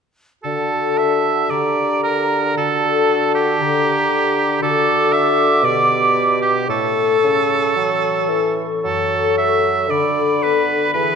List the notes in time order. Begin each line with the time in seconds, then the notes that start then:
0.43 D3 F#4 A4 A5
0.97 D4 E5
1.24 F#4
1.49 D3 G4 D5 A#5
1.75 A#4
2.02 D4 A#4
2.29 G4
2.56 D3 F#4 A4 A5
2.82 A4
3.09 D4
3.34 F#4 G4
3.60 D3 G4 A#5
4.11 D4
4.37 G4
4.62 D3 F#4 A4 D6
5.12 D4 E5
5.38 F#4
5.63 B2 G4 D5
5.88 G4
6.14 B3
6.41 D4 G4
6.68 A2 A4 C#6
6.95 A4
7.22 C#3 C#4
7.49 E4
7.76 E3 F#3
8.03 A4
8.30 E3 C#4
8.56 E4
8.83 F#2 F#3 A4
9.37 E5
9.64 F#4
9.89 D3 D5 B5
10.17 A4
10.43 B3 B4
10.68 F#4
10.94 E3 G#4 B4